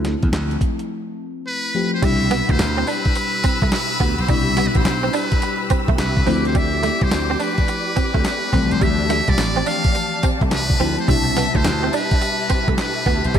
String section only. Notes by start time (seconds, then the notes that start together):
2.02 G4 B5 E6
6.26 D5 D6
8.53 A5
11.09 G4 E5